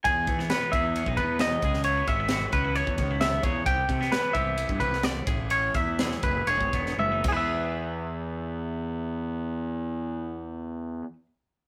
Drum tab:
CC |----------------|----------------|----------------|--------------x-|
RD |x-x-x-x-x-x-x-x-|x-x-x-x-x-x-x-x-|x-x-x-x-x-x-x-x-|x-x-x-x-x-x-----|
SD |---oo-------o--o|----o-------o---|---oo------oo---|----oo-----o----|
T1 |----------------|----------------|----------------|------------o---|
BD |o-o---o--oo---o-|--o---o--oo---o-|o-o---o--oo---o-|--o---o--oo---o-|

CC |----------------|----------------|
RD |----------------|----------------|
SD |----------------|----------------|
T1 |----------------|----------------|
BD |----------------|----------------|